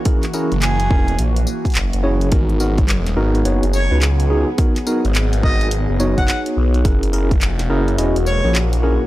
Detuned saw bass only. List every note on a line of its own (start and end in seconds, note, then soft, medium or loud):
0.52 0.89 F#1 medium
0.90 1.17 E1 loud
1.19 1.46 A#1 loud
1.75 1.90 F#1 loud
1.93 2.30 F#1 loud
2.32 3.15 G#1 loud
3.17 3.44 G#1 loud
3.45 3.60 F#1 loud
3.63 3.88 F#1 loud
3.91 4.45 C#2 loud
5.05 5.42 G#1 loud
5.43 5.87 G#1 loud
5.89 6.15 F#1 loud
6.18 6.27 F#1 loud
6.57 6.83 B1 loud
6.85 7.44 F#1 medium
7.44 7.68 F1 medium
7.70 7.96 F#1 loud
7.99 8.13 E1 loud
8.16 8.41 E1 loud
8.44 8.98 A#1 loud